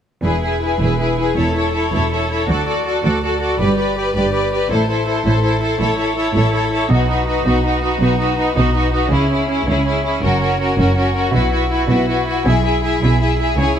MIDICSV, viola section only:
0, 0, Header, 1, 2, 480
1, 0, Start_track
1, 0, Key_signature, 4, "major"
1, 0, Tempo, 370599
1, 323, Time_signature, 12, 3, 24, 8
1, 17865, End_track
2, 0, Start_track
2, 0, Title_t, "Viola section"
2, 0, Program_c, 0, 48
2, 311, Note_on_c, 0, 64, 33
2, 535, Note_off_c, 0, 64, 0
2, 551, Note_on_c, 0, 64, 31
2, 775, Note_off_c, 0, 64, 0
2, 790, Note_on_c, 0, 64, 34
2, 1020, Note_off_c, 0, 64, 0
2, 1036, Note_on_c, 0, 64, 32
2, 1269, Note_off_c, 0, 64, 0
2, 1284, Note_on_c, 0, 64, 31
2, 1519, Note_off_c, 0, 64, 0
2, 1535, Note_on_c, 0, 64, 34
2, 1750, Note_off_c, 0, 64, 0
2, 1766, Note_on_c, 0, 64, 34
2, 1983, Note_off_c, 0, 64, 0
2, 1998, Note_on_c, 0, 64, 34
2, 2236, Note_off_c, 0, 64, 0
2, 2252, Note_on_c, 0, 64, 35
2, 2482, Note_off_c, 0, 64, 0
2, 2498, Note_on_c, 0, 64, 39
2, 2731, Note_off_c, 0, 64, 0
2, 2746, Note_on_c, 0, 64, 32
2, 2967, Note_off_c, 0, 64, 0
2, 2983, Note_on_c, 0, 64, 35
2, 3220, Note_off_c, 0, 64, 0
2, 3223, Note_on_c, 0, 66, 34
2, 3450, Note_off_c, 0, 66, 0
2, 3466, Note_on_c, 0, 66, 33
2, 3702, Note_off_c, 0, 66, 0
2, 3720, Note_on_c, 0, 66, 33
2, 3929, Note_off_c, 0, 66, 0
2, 3944, Note_on_c, 0, 66, 36
2, 4180, Note_off_c, 0, 66, 0
2, 4194, Note_on_c, 0, 66, 31
2, 4399, Note_off_c, 0, 66, 0
2, 4414, Note_on_c, 0, 66, 37
2, 4652, Note_off_c, 0, 66, 0
2, 4672, Note_on_c, 0, 67, 39
2, 4887, Note_off_c, 0, 67, 0
2, 4903, Note_on_c, 0, 67, 36
2, 5138, Note_off_c, 0, 67, 0
2, 5154, Note_on_c, 0, 67, 38
2, 5376, Note_off_c, 0, 67, 0
2, 5392, Note_on_c, 0, 67, 38
2, 5607, Note_off_c, 0, 67, 0
2, 5622, Note_on_c, 0, 67, 36
2, 5851, Note_off_c, 0, 67, 0
2, 5867, Note_on_c, 0, 67, 38
2, 6097, Note_off_c, 0, 67, 0
2, 6102, Note_on_c, 0, 64, 37
2, 6326, Note_off_c, 0, 64, 0
2, 6342, Note_on_c, 0, 64, 34
2, 6547, Note_off_c, 0, 64, 0
2, 6563, Note_on_c, 0, 64, 41
2, 6771, Note_off_c, 0, 64, 0
2, 6787, Note_on_c, 0, 64, 40
2, 7015, Note_off_c, 0, 64, 0
2, 7030, Note_on_c, 0, 64, 33
2, 7249, Note_off_c, 0, 64, 0
2, 7265, Note_on_c, 0, 64, 40
2, 7493, Note_off_c, 0, 64, 0
2, 7508, Note_on_c, 0, 64, 42
2, 7716, Note_off_c, 0, 64, 0
2, 7731, Note_on_c, 0, 64, 38
2, 7962, Note_off_c, 0, 64, 0
2, 7978, Note_on_c, 0, 64, 40
2, 8194, Note_off_c, 0, 64, 0
2, 8210, Note_on_c, 0, 64, 43
2, 8433, Note_off_c, 0, 64, 0
2, 8448, Note_on_c, 0, 64, 37
2, 8680, Note_off_c, 0, 64, 0
2, 8695, Note_on_c, 0, 64, 43
2, 8938, Note_off_c, 0, 64, 0
2, 8939, Note_on_c, 0, 63, 42
2, 9161, Note_off_c, 0, 63, 0
2, 9177, Note_on_c, 0, 63, 36
2, 9402, Note_off_c, 0, 63, 0
2, 9418, Note_on_c, 0, 63, 39
2, 9652, Note_off_c, 0, 63, 0
2, 9668, Note_on_c, 0, 63, 42
2, 9882, Note_off_c, 0, 63, 0
2, 9897, Note_on_c, 0, 63, 39
2, 10127, Note_off_c, 0, 63, 0
2, 10143, Note_on_c, 0, 63, 41
2, 10361, Note_off_c, 0, 63, 0
2, 10376, Note_on_c, 0, 63, 41
2, 10595, Note_off_c, 0, 63, 0
2, 10611, Note_on_c, 0, 63, 40
2, 10828, Note_off_c, 0, 63, 0
2, 10843, Note_on_c, 0, 63, 44
2, 11063, Note_off_c, 0, 63, 0
2, 11078, Note_on_c, 0, 63, 44
2, 11306, Note_off_c, 0, 63, 0
2, 11321, Note_on_c, 0, 63, 42
2, 11547, Note_off_c, 0, 63, 0
2, 11563, Note_on_c, 0, 63, 41
2, 11793, Note_on_c, 0, 61, 42
2, 11802, Note_off_c, 0, 63, 0
2, 12037, Note_off_c, 0, 61, 0
2, 12050, Note_on_c, 0, 61, 41
2, 12268, Note_off_c, 0, 61, 0
2, 12284, Note_on_c, 0, 61, 43
2, 12507, Note_off_c, 0, 61, 0
2, 12522, Note_on_c, 0, 61, 41
2, 12753, Note_off_c, 0, 61, 0
2, 12769, Note_on_c, 0, 61, 35
2, 12987, Note_off_c, 0, 61, 0
2, 13003, Note_on_c, 0, 61, 41
2, 13236, Note_off_c, 0, 61, 0
2, 13252, Note_on_c, 0, 61, 41
2, 13473, Note_off_c, 0, 61, 0
2, 13489, Note_on_c, 0, 61, 42
2, 13716, Note_off_c, 0, 61, 0
2, 13732, Note_on_c, 0, 61, 39
2, 13944, Note_off_c, 0, 61, 0
2, 13959, Note_on_c, 0, 61, 47
2, 14192, Note_off_c, 0, 61, 0
2, 14208, Note_on_c, 0, 61, 42
2, 14439, Note_off_c, 0, 61, 0
2, 14454, Note_on_c, 0, 61, 45
2, 14683, Note_on_c, 0, 64, 43
2, 14686, Note_off_c, 0, 61, 0
2, 14898, Note_off_c, 0, 64, 0
2, 14914, Note_on_c, 0, 64, 40
2, 15141, Note_off_c, 0, 64, 0
2, 15156, Note_on_c, 0, 64, 41
2, 15388, Note_off_c, 0, 64, 0
2, 15404, Note_on_c, 0, 64, 42
2, 15624, Note_off_c, 0, 64, 0
2, 15639, Note_on_c, 0, 64, 39
2, 15874, Note_off_c, 0, 64, 0
2, 15890, Note_on_c, 0, 64, 41
2, 16113, Note_off_c, 0, 64, 0
2, 16128, Note_on_c, 0, 64, 44
2, 16358, Note_off_c, 0, 64, 0
2, 16373, Note_on_c, 0, 64, 39
2, 16611, Note_off_c, 0, 64, 0
2, 16626, Note_on_c, 0, 64, 41
2, 16864, Note_off_c, 0, 64, 0
2, 16880, Note_on_c, 0, 64, 40
2, 17095, Note_off_c, 0, 64, 0
2, 17111, Note_on_c, 0, 64, 42
2, 17339, Note_off_c, 0, 64, 0
2, 17355, Note_on_c, 0, 64, 39
2, 17573, Note_off_c, 0, 64, 0
2, 17588, Note_on_c, 0, 64, 42
2, 17812, Note_off_c, 0, 64, 0
2, 17865, End_track
0, 0, End_of_file